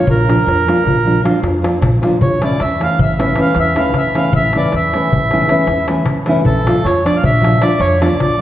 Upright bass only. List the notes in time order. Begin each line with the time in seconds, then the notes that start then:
0.07 A#1
0.47 F2
0.86 A#1
1.43 F2
1.82 A#1
2.21 A1
2.61 E2
2.99 A1
3.56 E2
3.94 A1
4.33 A1
4.73 E2
5.13 A1
5.67 E2
6.06 A1
6.45 A#1
6.84 F2
7.23 A#1
7.79 F2
8.19 A#1